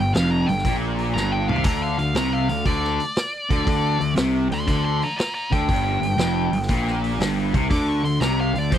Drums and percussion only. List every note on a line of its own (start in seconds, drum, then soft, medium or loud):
0.14 snare loud
0.14 open hi-hat medium
0.49 open hi-hat medium
0.58 snare soft
0.65 kick medium
0.65 open hi-hat medium
0.99 open hi-hat medium
1.17 snare medium
1.49 mid tom medium
1.56 floor tom medium
1.64 kick loud
1.64 open hi-hat medium
1.64 splash medium
1.99 open hi-hat medium
2.15 snare loud
2.15 open hi-hat medium
2.49 open hi-hat medium
2.65 kick medium
2.65 open hi-hat medium
2.84 snare soft
3.00 open hi-hat medium
3.16 snare loud
3.16 open hi-hat medium
3.50 kick loud
3.50 open hi-hat medium
3.67 kick loud
3.67 open hi-hat medium
4.01 open hi-hat medium
4.16 snare loud
4.16 open hi-hat medium
4.52 open hi-hat medium
4.68 kick loud
4.68 open hi-hat medium
5.02 open hi-hat soft
5.19 snare loud
5.19 open hi-hat medium
5.53 kick loud
5.53 open hi-hat medium
5.69 kick loud
5.69 open hi-hat medium
6.03 open hi-hat medium
6.18 snare loud
6.18 open hi-hat medium
6.53 open hi-hat medium
6.62 snare soft
6.68 kick medium
6.68 open hi-hat medium
6.87 snare soft
7.04 open hi-hat medium
7.20 snare loud
7.20 open hi-hat medium
7.54 kick loud
7.54 open hi-hat medium
7.71 kick loud
7.71 open hi-hat medium
8.05 open hi-hat medium
8.21 snare loud
8.21 open hi-hat medium
8.55 open hi-hat medium
8.72 kick medium
8.72 open hi-hat medium